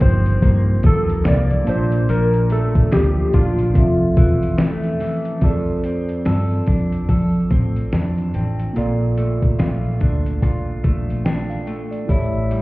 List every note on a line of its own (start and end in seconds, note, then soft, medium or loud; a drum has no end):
0.00 0.35 G1 medium
0.00 1.67 G2 medium
0.00 0.83 F3 medium
0.00 0.42 A#3 medium
0.00 1.62 A#3 medium
0.00 1.77 C4 medium
0.00 1.63 D#4 medium
0.00 1.63 F4 medium
0.00 1.64 G4 medium
0.00 1.64 C5 medium
0.00 0.81 C5 loud
0.00 kick loud
0.00 closed hi-hat medium
0.26 closed hi-hat medium
0.42 0.76 G2 loud
0.42 1.25 A#3 medium
0.42 kick medium
0.42 closed hi-hat loud
0.83 1.18 D#2 loud
0.83 2.92 F3 medium
0.83 1.24 A4 loud
0.83 kick loud
0.83 closed hi-hat medium
1.10 closed hi-hat medium
1.25 1.60 C2 loud
1.25 2.50 A#3 medium
1.25 1.70 D5 loud
1.25 snare loud
1.25 clap medium
1.25 closed hi-hat medium
1.50 closed hi-hat soft
1.64 2.01 A#1 loud
1.64 2.08 A#2 medium
1.64 3.70 A#3 medium
1.64 3.70 D4 medium
1.64 3.71 F4 medium
1.64 3.71 A5 medium
1.64 closed hi-hat medium
1.69 2.07 C5 loud
1.69 3.72 D5 medium
1.92 closed hi-hat medium
2.09 2.76 A#1 loud
2.09 3.75 A#2 medium
2.09 2.48 A#4 loud
2.09 closed hi-hat medium
2.33 closed hi-hat soft
2.50 4.59 A3 medium
2.50 2.90 A4 medium
2.50 closed hi-hat medium
2.75 kick medium
2.75 closed hi-hat medium
2.92 3.26 D2 loud
2.92 4.17 F3 medium
2.92 3.27 G4 medium
2.92 snare loud
2.92 clap medium
2.92 closed hi-hat loud
3.28 3.34 G4 medium
3.33 3.67 A#1 medium
3.33 3.86 D4 medium
3.33 4.55 F4 medium
3.33 kick medium
3.33 closed hi-hat medium
3.59 closed hi-hat medium
3.73 4.09 F1 loud
3.73 5.39 F3 medium
3.73 5.37 C4 medium
3.73 5.39 A4 medium
3.73 kick medium
3.73 closed hi-hat loud
3.78 5.40 E5 medium
4.17 4.84 E1 medium
4.17 5.00 E3 medium
4.17 kick loud
4.17 closed hi-hat medium
4.43 closed hi-hat medium
4.58 5.84 A3 medium
4.58 snare loud
4.58 clap medium
4.58 closed hi-hat medium
4.83 closed hi-hat soft
5.00 5.42 E3 medium
5.00 snare soft
5.00 open hi-hat medium
5.25 closed hi-hat medium
5.40 6.09 F2 medium
5.40 8.93 F3 medium
5.40 8.70 C4 medium
5.40 8.71 F4 medium
5.40 5.50 G#4 medium
5.40 kick loud
5.40 closed hi-hat medium
5.44 6.26 A4 medium
5.44 8.72 D5 medium
5.49 8.75 A4 medium
5.84 7.50 C4 medium
5.84 closed hi-hat medium
6.09 closed hi-hat soft
6.25 6.59 G2 medium
6.25 7.09 A4 medium
6.25 snare medium
6.25 closed hi-hat medium
6.67 7.01 F2 medium
6.67 7.93 D4 medium
6.67 kick medium
6.67 closed hi-hat medium
6.92 closed hi-hat soft
7.09 7.42 F3 medium
7.09 10.59 A4 medium
7.09 kick medium
7.09 closed hi-hat medium
7.51 7.84 A2 medium
7.51 8.34 C4 medium
7.51 kick medium
7.51 closed hi-hat medium
7.76 closed hi-hat soft
7.93 8.26 F2 medium
7.93 8.77 D4 medium
7.93 snare loud
7.93 closed hi-hat medium
8.18 closed hi-hat soft
8.34 8.68 A1 medium
8.34 8.86 C4 soft
8.34 closed hi-hat medium
8.59 closed hi-hat medium
8.73 9.43 A#1 medium
8.73 12.09 A#2 medium
8.73 12.04 A#3 medium
8.73 12.05 F4 medium
8.73 9.58 F4 medium
8.73 12.05 A4 medium
8.73 closed hi-hat medium
8.78 11.23 D5 medium
9.18 10.84 A3 medium
9.18 closed hi-hat medium
9.42 kick medium
9.42 closed hi-hat soft
9.59 9.93 A#1 medium
9.59 10.41 F4 medium
9.59 snare medium
9.59 closed hi-hat medium
10.01 10.43 D2 medium
10.01 11.25 D4 medium
10.01 kick medium
10.01 closed hi-hat medium
10.26 closed hi-hat soft
10.42 10.76 A#2 medium
10.42 12.09 F4 medium
10.42 kick medium
10.42 closed hi-hat medium
10.84 11.51 A#1 medium
10.84 11.67 A3 medium
10.84 kick medium
10.84 closed hi-hat medium
11.10 closed hi-hat soft
11.25 12.19 D4 medium
11.25 11.49 G5 medium
11.25 snare loud
11.25 closed hi-hat medium
11.50 11.90 F5 medium
11.50 closed hi-hat soft
11.67 12.51 A3 medium
11.67 closed hi-hat medium
11.91 12.31 D5 medium
11.91 closed hi-hat soft
12.05 12.62 A1 loud
12.05 12.62 A2 medium
12.05 12.62 A3 medium
12.05 12.62 E4 medium
12.05 12.62 G4 medium
12.05 kick medium
12.05 closed hi-hat medium
12.10 12.62 E4 medium
12.10 12.62 C#5 medium
12.51 12.62 G3 medium
12.51 closed hi-hat medium